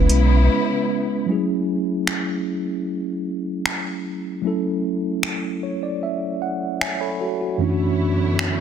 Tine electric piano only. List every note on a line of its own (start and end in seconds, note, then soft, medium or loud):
0.00 1.24 G#3 medium
0.00 1.25 B3 medium
0.00 1.25 C#4 medium
0.00 1.26 E4 medium
0.00 1.27 B4 medium
1.26 4.39 F#3 medium
1.26 1.34 G#3 medium
1.26 4.40 C#4 medium
1.30 4.42 A3 medium
1.30 4.41 E4 medium
1.30 4.42 G#4 medium
4.42 7.55 F#3 medium
4.42 7.55 A3 medium
4.42 7.56 C#4 medium
4.46 7.57 E4 medium
4.46 6.78 A4 medium
5.63 5.81 C#5 medium
5.83 6.01 D5 medium
6.03 6.39 E5 medium
6.42 6.78 F#5 medium
6.81 6.99 C#5 medium
6.81 7.00 E5 medium
6.81 6.99 G#5 medium
7.01 7.19 A4 medium
7.01 7.19 C#5 medium
7.01 7.56 B5 medium
7.21 7.39 F#4 medium
7.21 7.39 A4 medium
7.41 7.69 F#4 medium
7.58 8.60 F#2 medium
7.58 8.60 E3 medium
7.58 8.60 A3 medium
7.58 8.60 C#4 medium
7.62 8.60 D4 medium
7.62 7.68 E4 medium
7.70 8.60 F#4 medium